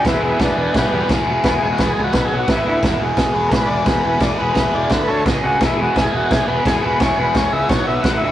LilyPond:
<<
  \new Staff \with { instrumentName = "Transistor combo organ" } { \time 4/4 \key e \mixolydian \tempo 4 = 172 <b e'>8 <b e'>8 <b d'>8 <b d'>8 <g b>4 r4 | \tuplet 3/2 { b'8 gis'8 fis'8 b'8 gis'8 fis'8 b'8 gis'8 fis'8 } <b e'>4 | r2 <ais' b'>8 d''8 b'8 <ais' b'>8 | d''8 b'8 <ais' b'>8 d''8 b'8 <a' cis''>8 r8 fis'8 |
e'8 fis'8 gis'8 fis'8 gis'8 b'8 gis'8 b'8 | cis''8 b'8 cis''8 e''8 cis''8 e''8 fis''8 e''8 | }
  \new Staff \with { instrumentName = "Overdriven electric guitar" } { \time 4/4 \key e \mixolydian <e gis b e' gis'>8 <e gis b e' gis'>8 <e gis b e' gis'>8 <e gis b e' gis'>8 <e gis b e' gis'>8 <e gis b e' gis'>8 <e gis b e' gis'>8 <e gis b e' gis'>8 | <e gis b e' gis'>8 <e gis b e' gis'>8 <e gis b e' gis'>8 <e gis b e' gis'>8 <b, fis b fis'>8 <b, fis b fis'>8 <a, e a e'>8 <a, e a e'>8 | <e gis b e' gis'>8 <e gis b e' gis'>8 <e gis b e' gis'>8 <e gis b e' gis'>8 <e gis b e' gis'>8 <e gis b e' gis'>8 <e gis b e' gis'>8 <e gis b e' gis'>8 | <e gis b e' gis'>8 <e gis b e' gis'>8 <e gis b e' gis'>8 <e gis b e' gis'>8 <d a d' a'>8 <d a d' a'>8 <cis gis cis' gis'>8 <cis gis cis' gis'>8 |
<e gis b e' gis'>8 <e gis b e' gis'>8 <e gis b e' gis'>8 <e gis b e' gis'>8 <e gis b e' gis'>8 <e gis b e' gis'>8 <e gis b e' gis'>8 <e gis b e' gis'>8 | <e gis b e' gis'>8 <e gis b e' gis'>8 <e gis b e' gis'>8 <e gis b e' gis'>8 <b, fis b fis'>8 <b, fis b fis'>8 <a, e a e'>8 <a, e a e'>8 | }
  \new Staff \with { instrumentName = "Picked electric bass" } { \clef bass \time 4/4 \key e \mixolydian e,,8 e,,8 e,,8 e,,8 b,,8 e,,8 e,,8 e,,8 | e,,8 e,,8 e,,8 cis,8 b,,8 b,,8 a,,8 d,8 | e,,8 e,,8 e,,8 e,,8 b,,8 e,,8 e,,8 e,,8 | e,,8 e,,8 e,,8 e,,8 d,8 d,8 cis,8 cis,8 |
e,,8 e,,8 e,,8 e,,8 b,,8 e,,8 e,,8 e,,8 | e,,8 e,,8 e,,8 cis,8 b,,8 b,,8 a,,8 d,8 | }
  \new DrumStaff \with { instrumentName = "Drums" } \drummode { \time 4/4 <cymc bd sn>4 <cymc bd sn>4 <cymc bd sn>4 <cymc bd sn>4 | <cymc bd sn>4 <cymc bd sn>4 <cymc bd sn>4 <cymc bd sn>4 | <cymc bd sn>4 <cymc bd sn>4 <cymc bd sn>4 <cymc bd sn>4 | <cymc bd sn>4 <cymc bd sn>4 <cymc bd sn>4 <cymc bd sn>4 |
<cymc bd sn>4 <cymc bd sn>4 <cymc bd sn>4 <cymc bd sn>4 | <cymc bd sn>4 <cymc bd sn>4 <cymc bd sn>4 <cymc bd sn>4 | }
>>